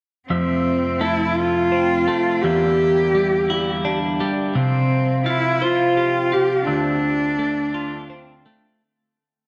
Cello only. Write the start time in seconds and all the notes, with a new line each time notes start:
0.29 C4
1.00 E4
1.36 F4
2.42 G4
4.56 C4
5.27 E4
5.63 F4
6.33 G4
6.68 D4